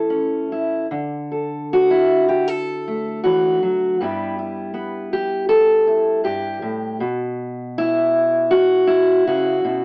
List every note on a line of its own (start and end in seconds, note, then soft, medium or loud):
0.00 0.85 A2 medium
0.00 0.90 E3 medium
0.00 0.51 E4 soft
0.00 0.85 A4 soft
0.10 0.85 C#4 soft
0.52 0.86 E4 soft
0.91 3.95 D3 medium
1.32 1.70 A4 soft
1.73 2.48 F#4 medium
1.91 2.28 E4 medium
2.29 2.47 G4 medium
2.48 3.23 A4 medium
2.88 4.00 A3 soft
3.24 3.62 E3 medium
3.24 3.99 F#4 medium
3.63 4.00 F#3 medium
4.00 6.22 G2 medium
4.00 6.97 G3 soft
4.00 4.73 B3 soft
4.00 4.37 E4 soft
4.00 5.12 G4 soft
4.39 5.86 E4 soft
4.74 6.96 B3 soft
5.13 5.48 G4 medium
5.49 6.24 A4 medium
5.87 6.96 E4 soft
6.24 6.62 G2 medium
6.24 7.00 G4 medium
6.62 7.00 A2 medium
7.00 9.27 B2 medium
7.78 8.86 E4 loud
8.51 9.26 F#4 medium
8.87 9.85 E4 medium
9.27 9.64 C#3 medium
9.27 9.85 F#4 medium
9.64 9.85 B2 medium